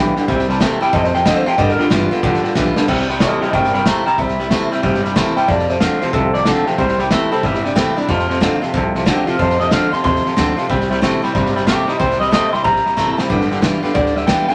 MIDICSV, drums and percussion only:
0, 0, Header, 1, 2, 480
1, 0, Start_track
1, 0, Tempo, 325556
1, 414, Time_signature, 4, 2, 24, 8
1, 21447, End_track
2, 0, Start_track
2, 0, Title_t, "Drums"
2, 238, Note_on_c, 9, 38, 37
2, 385, Note_off_c, 9, 38, 0
2, 412, Note_on_c, 9, 38, 38
2, 417, Note_on_c, 9, 36, 114
2, 559, Note_off_c, 9, 38, 0
2, 564, Note_off_c, 9, 36, 0
2, 570, Note_on_c, 9, 38, 34
2, 718, Note_off_c, 9, 38, 0
2, 723, Note_on_c, 9, 38, 35
2, 870, Note_off_c, 9, 38, 0
2, 892, Note_on_c, 9, 38, 107
2, 892, Note_on_c, 9, 44, 92
2, 895, Note_on_c, 9, 36, 88
2, 1040, Note_off_c, 9, 38, 0
2, 1040, Note_off_c, 9, 44, 0
2, 1043, Note_off_c, 9, 36, 0
2, 1200, Note_on_c, 9, 38, 36
2, 1347, Note_off_c, 9, 38, 0
2, 1370, Note_on_c, 9, 38, 37
2, 1373, Note_on_c, 9, 36, 122
2, 1518, Note_off_c, 9, 38, 0
2, 1521, Note_off_c, 9, 36, 0
2, 1530, Note_on_c, 9, 38, 34
2, 1678, Note_off_c, 9, 38, 0
2, 1680, Note_on_c, 9, 38, 35
2, 1827, Note_off_c, 9, 38, 0
2, 1852, Note_on_c, 9, 38, 122
2, 1852, Note_on_c, 9, 44, 87
2, 1853, Note_on_c, 9, 36, 95
2, 1999, Note_off_c, 9, 38, 0
2, 1999, Note_off_c, 9, 44, 0
2, 2001, Note_off_c, 9, 36, 0
2, 2159, Note_on_c, 9, 38, 34
2, 2307, Note_off_c, 9, 38, 0
2, 2325, Note_on_c, 9, 38, 36
2, 2331, Note_on_c, 9, 36, 116
2, 2472, Note_off_c, 9, 38, 0
2, 2479, Note_off_c, 9, 36, 0
2, 2482, Note_on_c, 9, 38, 35
2, 2629, Note_off_c, 9, 38, 0
2, 2638, Note_on_c, 9, 38, 34
2, 2785, Note_off_c, 9, 38, 0
2, 2809, Note_on_c, 9, 38, 111
2, 2809, Note_on_c, 9, 44, 88
2, 2811, Note_on_c, 9, 36, 86
2, 2956, Note_off_c, 9, 38, 0
2, 2956, Note_off_c, 9, 44, 0
2, 2959, Note_off_c, 9, 36, 0
2, 3113, Note_on_c, 9, 38, 35
2, 3260, Note_off_c, 9, 38, 0
2, 3290, Note_on_c, 9, 36, 120
2, 3290, Note_on_c, 9, 38, 35
2, 3437, Note_off_c, 9, 36, 0
2, 3437, Note_off_c, 9, 38, 0
2, 3443, Note_on_c, 9, 38, 37
2, 3591, Note_off_c, 9, 38, 0
2, 3596, Note_on_c, 9, 38, 36
2, 3744, Note_off_c, 9, 38, 0
2, 3764, Note_on_c, 9, 38, 69
2, 3764, Note_on_c, 9, 44, 91
2, 3768, Note_on_c, 9, 36, 98
2, 3911, Note_off_c, 9, 38, 0
2, 3911, Note_off_c, 9, 44, 0
2, 3915, Note_off_c, 9, 36, 0
2, 4074, Note_on_c, 9, 38, 90
2, 4222, Note_off_c, 9, 38, 0
2, 4250, Note_on_c, 9, 36, 111
2, 4250, Note_on_c, 9, 38, 33
2, 4250, Note_on_c, 9, 49, 100
2, 4397, Note_off_c, 9, 36, 0
2, 4397, Note_off_c, 9, 38, 0
2, 4397, Note_off_c, 9, 49, 0
2, 4401, Note_on_c, 9, 38, 31
2, 4548, Note_off_c, 9, 38, 0
2, 4553, Note_on_c, 9, 38, 37
2, 4701, Note_off_c, 9, 38, 0
2, 4722, Note_on_c, 9, 38, 108
2, 4722, Note_on_c, 9, 44, 81
2, 4726, Note_on_c, 9, 36, 88
2, 4869, Note_off_c, 9, 38, 0
2, 4869, Note_off_c, 9, 44, 0
2, 4873, Note_off_c, 9, 36, 0
2, 5030, Note_on_c, 9, 38, 34
2, 5177, Note_off_c, 9, 38, 0
2, 5205, Note_on_c, 9, 38, 35
2, 5206, Note_on_c, 9, 36, 113
2, 5353, Note_off_c, 9, 38, 0
2, 5354, Note_off_c, 9, 36, 0
2, 5362, Note_on_c, 9, 38, 33
2, 5510, Note_off_c, 9, 38, 0
2, 5510, Note_on_c, 9, 38, 36
2, 5658, Note_off_c, 9, 38, 0
2, 5684, Note_on_c, 9, 38, 121
2, 5684, Note_on_c, 9, 44, 98
2, 5685, Note_on_c, 9, 36, 93
2, 5832, Note_off_c, 9, 38, 0
2, 5832, Note_off_c, 9, 44, 0
2, 5833, Note_off_c, 9, 36, 0
2, 5992, Note_on_c, 9, 38, 34
2, 6139, Note_off_c, 9, 38, 0
2, 6160, Note_on_c, 9, 38, 33
2, 6164, Note_on_c, 9, 36, 107
2, 6307, Note_off_c, 9, 38, 0
2, 6311, Note_off_c, 9, 36, 0
2, 6311, Note_on_c, 9, 38, 36
2, 6459, Note_off_c, 9, 38, 0
2, 6472, Note_on_c, 9, 38, 34
2, 6619, Note_off_c, 9, 38, 0
2, 6644, Note_on_c, 9, 38, 105
2, 6644, Note_on_c, 9, 44, 76
2, 6646, Note_on_c, 9, 36, 78
2, 6792, Note_off_c, 9, 38, 0
2, 6792, Note_off_c, 9, 44, 0
2, 6794, Note_off_c, 9, 36, 0
2, 6952, Note_on_c, 9, 38, 34
2, 7099, Note_off_c, 9, 38, 0
2, 7127, Note_on_c, 9, 36, 111
2, 7127, Note_on_c, 9, 38, 36
2, 7274, Note_off_c, 9, 36, 0
2, 7274, Note_off_c, 9, 38, 0
2, 7283, Note_on_c, 9, 38, 34
2, 7430, Note_off_c, 9, 38, 0
2, 7435, Note_on_c, 9, 38, 33
2, 7582, Note_off_c, 9, 38, 0
2, 7607, Note_on_c, 9, 36, 92
2, 7607, Note_on_c, 9, 38, 123
2, 7607, Note_on_c, 9, 44, 88
2, 7754, Note_off_c, 9, 36, 0
2, 7754, Note_off_c, 9, 38, 0
2, 7754, Note_off_c, 9, 44, 0
2, 7911, Note_on_c, 9, 38, 32
2, 8059, Note_off_c, 9, 38, 0
2, 8084, Note_on_c, 9, 38, 35
2, 8086, Note_on_c, 9, 36, 115
2, 8232, Note_off_c, 9, 38, 0
2, 8233, Note_off_c, 9, 36, 0
2, 8235, Note_on_c, 9, 38, 34
2, 8383, Note_off_c, 9, 38, 0
2, 8385, Note_on_c, 9, 38, 33
2, 8533, Note_off_c, 9, 38, 0
2, 8560, Note_on_c, 9, 38, 109
2, 8560, Note_on_c, 9, 44, 88
2, 8563, Note_on_c, 9, 36, 81
2, 8707, Note_off_c, 9, 38, 0
2, 8707, Note_off_c, 9, 44, 0
2, 8711, Note_off_c, 9, 36, 0
2, 8864, Note_on_c, 9, 38, 34
2, 9012, Note_off_c, 9, 38, 0
2, 9034, Note_on_c, 9, 38, 35
2, 9041, Note_on_c, 9, 36, 117
2, 9181, Note_off_c, 9, 38, 0
2, 9188, Note_off_c, 9, 36, 0
2, 9344, Note_on_c, 9, 38, 35
2, 9492, Note_off_c, 9, 38, 0
2, 9515, Note_on_c, 9, 38, 117
2, 9515, Note_on_c, 9, 44, 92
2, 9520, Note_on_c, 9, 36, 97
2, 9663, Note_off_c, 9, 38, 0
2, 9663, Note_off_c, 9, 44, 0
2, 9667, Note_off_c, 9, 36, 0
2, 9823, Note_on_c, 9, 38, 34
2, 9971, Note_off_c, 9, 38, 0
2, 9993, Note_on_c, 9, 38, 33
2, 10000, Note_on_c, 9, 36, 109
2, 10140, Note_off_c, 9, 38, 0
2, 10147, Note_off_c, 9, 36, 0
2, 10147, Note_on_c, 9, 38, 35
2, 10294, Note_off_c, 9, 38, 0
2, 10301, Note_on_c, 9, 38, 34
2, 10448, Note_off_c, 9, 38, 0
2, 10476, Note_on_c, 9, 38, 103
2, 10476, Note_on_c, 9, 44, 79
2, 10479, Note_on_c, 9, 36, 83
2, 10623, Note_off_c, 9, 38, 0
2, 10623, Note_off_c, 9, 44, 0
2, 10626, Note_off_c, 9, 36, 0
2, 10786, Note_on_c, 9, 38, 37
2, 10933, Note_off_c, 9, 38, 0
2, 10958, Note_on_c, 9, 38, 37
2, 10959, Note_on_c, 9, 36, 116
2, 11106, Note_off_c, 9, 38, 0
2, 11107, Note_off_c, 9, 36, 0
2, 11114, Note_on_c, 9, 38, 35
2, 11261, Note_off_c, 9, 38, 0
2, 11273, Note_on_c, 9, 38, 35
2, 11420, Note_off_c, 9, 38, 0
2, 11441, Note_on_c, 9, 36, 94
2, 11443, Note_on_c, 9, 38, 115
2, 11443, Note_on_c, 9, 44, 86
2, 11589, Note_off_c, 9, 36, 0
2, 11590, Note_off_c, 9, 38, 0
2, 11590, Note_off_c, 9, 44, 0
2, 11746, Note_on_c, 9, 38, 36
2, 11893, Note_off_c, 9, 38, 0
2, 11921, Note_on_c, 9, 36, 107
2, 11921, Note_on_c, 9, 38, 32
2, 12068, Note_off_c, 9, 36, 0
2, 12068, Note_off_c, 9, 38, 0
2, 12074, Note_on_c, 9, 38, 35
2, 12222, Note_off_c, 9, 38, 0
2, 12233, Note_on_c, 9, 38, 36
2, 12380, Note_off_c, 9, 38, 0
2, 12405, Note_on_c, 9, 36, 86
2, 12409, Note_on_c, 9, 38, 102
2, 12409, Note_on_c, 9, 44, 79
2, 12552, Note_off_c, 9, 36, 0
2, 12556, Note_off_c, 9, 38, 0
2, 12556, Note_off_c, 9, 44, 0
2, 12715, Note_on_c, 9, 38, 36
2, 12863, Note_off_c, 9, 38, 0
2, 12884, Note_on_c, 9, 36, 116
2, 12885, Note_on_c, 9, 38, 34
2, 13032, Note_off_c, 9, 36, 0
2, 13033, Note_off_c, 9, 38, 0
2, 13192, Note_on_c, 9, 38, 35
2, 13339, Note_off_c, 9, 38, 0
2, 13364, Note_on_c, 9, 38, 115
2, 13364, Note_on_c, 9, 44, 85
2, 13365, Note_on_c, 9, 36, 97
2, 13512, Note_off_c, 9, 36, 0
2, 13512, Note_off_c, 9, 38, 0
2, 13512, Note_off_c, 9, 44, 0
2, 13677, Note_on_c, 9, 38, 35
2, 13825, Note_off_c, 9, 38, 0
2, 13847, Note_on_c, 9, 36, 109
2, 13851, Note_on_c, 9, 38, 31
2, 13994, Note_off_c, 9, 36, 0
2, 13998, Note_off_c, 9, 38, 0
2, 14000, Note_on_c, 9, 38, 34
2, 14148, Note_off_c, 9, 38, 0
2, 14151, Note_on_c, 9, 38, 34
2, 14298, Note_off_c, 9, 38, 0
2, 14323, Note_on_c, 9, 38, 102
2, 14323, Note_on_c, 9, 44, 86
2, 14325, Note_on_c, 9, 36, 83
2, 14470, Note_off_c, 9, 38, 0
2, 14470, Note_off_c, 9, 44, 0
2, 14473, Note_off_c, 9, 36, 0
2, 14635, Note_on_c, 9, 38, 33
2, 14783, Note_off_c, 9, 38, 0
2, 14806, Note_on_c, 9, 38, 35
2, 14807, Note_on_c, 9, 36, 105
2, 14953, Note_off_c, 9, 38, 0
2, 14954, Note_off_c, 9, 36, 0
2, 14967, Note_on_c, 9, 38, 35
2, 15115, Note_off_c, 9, 38, 0
2, 15121, Note_on_c, 9, 38, 36
2, 15268, Note_off_c, 9, 38, 0
2, 15288, Note_on_c, 9, 36, 86
2, 15291, Note_on_c, 9, 38, 110
2, 15291, Note_on_c, 9, 44, 84
2, 15435, Note_off_c, 9, 36, 0
2, 15438, Note_off_c, 9, 38, 0
2, 15438, Note_off_c, 9, 44, 0
2, 15599, Note_on_c, 9, 38, 36
2, 15746, Note_off_c, 9, 38, 0
2, 15771, Note_on_c, 9, 36, 114
2, 15772, Note_on_c, 9, 38, 36
2, 15918, Note_off_c, 9, 36, 0
2, 15919, Note_off_c, 9, 38, 0
2, 15931, Note_on_c, 9, 38, 36
2, 16078, Note_off_c, 9, 38, 0
2, 16082, Note_on_c, 9, 38, 33
2, 16230, Note_off_c, 9, 38, 0
2, 16251, Note_on_c, 9, 36, 84
2, 16254, Note_on_c, 9, 38, 98
2, 16254, Note_on_c, 9, 44, 79
2, 16399, Note_off_c, 9, 36, 0
2, 16402, Note_off_c, 9, 38, 0
2, 16402, Note_off_c, 9, 44, 0
2, 16565, Note_on_c, 9, 38, 31
2, 16713, Note_off_c, 9, 38, 0
2, 16731, Note_on_c, 9, 36, 114
2, 16732, Note_on_c, 9, 38, 38
2, 16879, Note_off_c, 9, 36, 0
2, 16879, Note_off_c, 9, 38, 0
2, 16887, Note_on_c, 9, 38, 34
2, 17034, Note_off_c, 9, 38, 0
2, 17044, Note_on_c, 9, 38, 37
2, 17192, Note_off_c, 9, 38, 0
2, 17211, Note_on_c, 9, 36, 92
2, 17213, Note_on_c, 9, 38, 111
2, 17213, Note_on_c, 9, 44, 94
2, 17358, Note_off_c, 9, 36, 0
2, 17360, Note_off_c, 9, 38, 0
2, 17360, Note_off_c, 9, 44, 0
2, 17518, Note_on_c, 9, 38, 36
2, 17666, Note_off_c, 9, 38, 0
2, 17687, Note_on_c, 9, 38, 36
2, 17690, Note_on_c, 9, 36, 118
2, 17835, Note_off_c, 9, 38, 0
2, 17838, Note_off_c, 9, 36, 0
2, 17848, Note_on_c, 9, 38, 35
2, 17996, Note_off_c, 9, 38, 0
2, 18002, Note_on_c, 9, 38, 36
2, 18150, Note_off_c, 9, 38, 0
2, 18172, Note_on_c, 9, 36, 80
2, 18174, Note_on_c, 9, 38, 112
2, 18174, Note_on_c, 9, 44, 79
2, 18319, Note_off_c, 9, 36, 0
2, 18322, Note_off_c, 9, 38, 0
2, 18322, Note_off_c, 9, 44, 0
2, 18484, Note_on_c, 9, 38, 32
2, 18631, Note_off_c, 9, 38, 0
2, 18652, Note_on_c, 9, 36, 116
2, 18654, Note_on_c, 9, 38, 36
2, 18799, Note_off_c, 9, 36, 0
2, 18801, Note_off_c, 9, 38, 0
2, 18807, Note_on_c, 9, 38, 33
2, 18955, Note_off_c, 9, 38, 0
2, 18959, Note_on_c, 9, 38, 36
2, 19107, Note_off_c, 9, 38, 0
2, 19129, Note_on_c, 9, 36, 92
2, 19131, Note_on_c, 9, 38, 66
2, 19131, Note_on_c, 9, 44, 87
2, 19276, Note_off_c, 9, 36, 0
2, 19279, Note_off_c, 9, 38, 0
2, 19279, Note_off_c, 9, 44, 0
2, 19437, Note_on_c, 9, 38, 90
2, 19585, Note_off_c, 9, 38, 0
2, 19609, Note_on_c, 9, 36, 116
2, 19612, Note_on_c, 9, 38, 35
2, 19756, Note_off_c, 9, 36, 0
2, 19760, Note_off_c, 9, 38, 0
2, 19763, Note_on_c, 9, 38, 37
2, 19911, Note_off_c, 9, 38, 0
2, 19915, Note_on_c, 9, 38, 36
2, 20063, Note_off_c, 9, 38, 0
2, 20088, Note_on_c, 9, 36, 80
2, 20089, Note_on_c, 9, 38, 106
2, 20089, Note_on_c, 9, 44, 76
2, 20236, Note_off_c, 9, 36, 0
2, 20237, Note_off_c, 9, 38, 0
2, 20237, Note_off_c, 9, 44, 0
2, 20400, Note_on_c, 9, 38, 32
2, 20548, Note_off_c, 9, 38, 0
2, 20569, Note_on_c, 9, 36, 112
2, 20569, Note_on_c, 9, 38, 35
2, 20717, Note_off_c, 9, 36, 0
2, 20717, Note_off_c, 9, 38, 0
2, 20726, Note_on_c, 9, 38, 35
2, 20873, Note_off_c, 9, 38, 0
2, 20878, Note_on_c, 9, 38, 36
2, 21026, Note_off_c, 9, 38, 0
2, 21049, Note_on_c, 9, 38, 112
2, 21049, Note_on_c, 9, 44, 91
2, 21050, Note_on_c, 9, 36, 92
2, 21196, Note_off_c, 9, 38, 0
2, 21196, Note_off_c, 9, 44, 0
2, 21198, Note_off_c, 9, 36, 0
2, 21359, Note_on_c, 9, 38, 36
2, 21447, Note_off_c, 9, 38, 0
2, 21447, End_track
0, 0, End_of_file